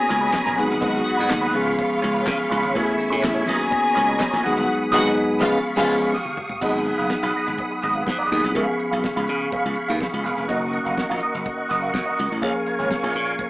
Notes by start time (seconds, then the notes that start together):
Already playing: D#3 A#3 B3 C#4 F#4 G#4 C#5 G#5 A#5 B5 D#6
0.08 C#2 C#4 D#4 A#4, closed hi-hat
0.21 C#4 D#4 B4, closed hi-hat
0.33 muted clean electric guitar stroke, kick, snare, clap
0.46 A#1 C#4 D#4 A#4
0.56 G#1 F#3 G#3 B3 D#4 F#4 G#4 B4 F#5 B5, open hi-hat
0.67 G1, muted clean electric guitar stroke, closed hi-hat
0.81 G#1 D#4 F#4 B4, kick, closed hi-hat
0.92 muted clean electric guitar stroke, closed hi-hat
1.05 muted clean electric guitar stroke, closed hi-hat
1.17 G#2 D#4 F#4 B4, closed hi-hat
1.30 D#2, muted clean electric guitar stroke, kick, snare, clap
1.41 D#4 F#4 B4, closed hi-hat
1.53 C#2 F3 G#3 B3 C#4 F4 G#4 B4 F5 B5 C#6, closed hi-hat
1.66 muted clean electric guitar stroke, closed hi-hat
1.78 muted clean electric guitar stroke, kick, closed hi-hat
1.90 muted clean electric guitar stroke, closed hi-hat
2.02 C#2 C#4 F4 C#5, closed hi-hat
2.14 C#4 F4 B4, closed hi-hat
2.26 C#3, muted clean electric guitar stroke, kick, snare, clap
2.38 muted clean electric guitar stroke, closed hi-hat
2.50 C#2 C#4 F4 B4, open hi-hat
2.62 G#1 C#4 F4 B4, closed hi-hat
2.74 A1 E3 A3 B3 C#4 E4 F#4 G#4 B4 E5 G#5, kick, closed hi-hat
2.82 G#4
2.87 muted clean electric guitar stroke
2.98 muted clean electric guitar stroke, closed hi-hat
3.10 A2 C#4 G#4 C#5, closed hi-hat
3.23 A1, muted clean electric guitar stroke, kick, snare, clap
3.34 C#4 G#4 C#5
3.46 B1 D#3 A#3 B3 C#4 D#4 F#4 G#4 A#4 C#5 G#5 A#5 D#6, closed hi-hat
3.58 muted clean electric guitar stroke, closed hi-hat
3.71 muted clean electric guitar stroke, kick, closed hi-hat
3.83 muted clean electric guitar stroke, closed hi-hat
3.94 C#2 D#4 A#4 C#5, closed hi-hat
4.07 D#4 A#4 D#5, closed hi-hat
4.19 muted clean electric guitar stroke, kick, snare, clap
4.31 A#1 D#4 A#4 C#5, closed hi-hat
4.42 G#1 F#3 G#3 B3 D#4 F#4 G#4 B4 D#5 F#5, open hi-hat
4.55 G1, muted clean electric guitar stroke, closed hi-hat
4.91 G#1 F#3 G#3 B3 D#4 F#4 G#4 B4 D#5 F#5, kick, snare, crash
5.40 C#2 F3 G#3 B3 C#4 F4 G#4 B4 F5 C#6, kick, snare
5.76 C#2 F3 G#3 B3 C#4 F4 G#4 B4 F5 G#5, kick, snare, crash
6.14 G4 D#6, snare
6.25 high tom
6.37 mid tom
6.49 floor tom
6.61 G#1 F#3 B3 D#4 F#4 G#4 B4 D#5 F#5 B5 D#6, kick, crash
6.74 muted clean electric guitar stroke
6.85 muted clean electric guitar stroke, closed hi-hat
6.98 F#1 F#4 B4 F5, closed hi-hat
7.10 muted clean electric guitar stroke, kick, snare
7.21 B1 F#4 B4 F5, closed hi-hat
7.33 F#4 B4 D#5, closed hi-hat
7.46 G#1, muted clean electric guitar stroke, closed hi-hat
7.58 muted clean electric guitar stroke, kick, closed hi-hat
7.69 muted clean electric guitar stroke, closed hi-hat
7.82 G#1 F#4 B4 D#5, closed hi-hat
7.94 F#4 B4 F5, closed hi-hat
8.07 G#2, muted clean electric guitar stroke, kick, snare
8.18 F#4 B4 D#5
8.30 D#2 F#3 B3 D#4 F#4 G#4 B4 D#5, open hi-hat
8.42 C2, muted clean electric guitar stroke, closed hi-hat
8.54 C#2 F3 B3 C#4 G#4 B4 F5 C#6, kick, closed hi-hat
8.68 muted clean electric guitar stroke
8.79 muted clean electric guitar stroke, closed hi-hat
8.91 B1 G#4 B4 F5, closed hi-hat
9.04 muted clean electric guitar stroke, kick, snare
9.16 C#2 G#4 B4 F5
9.27 C#3 G#4 B4 F5, closed hi-hat
9.41 muted clean electric guitar stroke, closed hi-hat
9.52 G#4 B4 F5, kick, closed hi-hat
9.64 C#2, muted clean electric guitar stroke
9.75 muted clean electric guitar stroke, closed hi-hat
9.88 D#2 G#4 B4 F5, closed hi-hat
10.00 muted clean electric guitar stroke, kick, snare
10.12 C#2, muted clean electric guitar stroke
10.24 E1 G#4 B4 F5, open hi-hat
10.36 F1 G#4 B4 F5, closed hi-hat
10.48 F#1 D#3 A#3 C#4 F#4 A#4 D#5 F#5, kick, closed hi-hat
10.62 muted clean electric guitar stroke
10.73 muted clean electric guitar stroke, closed hi-hat
10.85 F#1 F#4 A#4 F5, closed hi-hat
10.97 muted clean electric guitar stroke, kick, snare
11.09 A#1 F#4 A#4 F5, closed hi-hat
11.21 F#4 A#4 D#5, closed hi-hat
11.34 F#1, muted clean electric guitar stroke, closed hi-hat
11.46 muted clean electric guitar stroke, kick, closed hi-hat
11.58 muted clean electric guitar stroke
11.69 F#1 F#4 A#4 D#5, closed hi-hat
11.82 F#4 A#4 F5, closed hi-hat
11.94 F#2, muted clean electric guitar stroke, kick, snare
12.06 F#4 A#4 D#5
12.18 C#2 F#4 A#4 D#5, open hi-hat
12.29 A1, muted clean electric guitar stroke, closed hi-hat
12.41 A#1 F3 A#3 C#4 F4 G#4 A#4 C#5 F5 G#5 C#6, kick, closed hi-hat
12.55 muted clean electric guitar stroke
12.66 muted clean electric guitar stroke, closed hi-hat
12.79 G#1 F4 G#4 C#5, closed hi-hat
12.91 muted clean electric guitar stroke, kick, snare
13.03 A#1 F4 G#4 C#5
13.14 A#2 F4 G#4 C#5, closed hi-hat
13.27 muted clean electric guitar stroke, closed hi-hat
13.39 muted clean electric guitar stroke, kick, closed hi-hat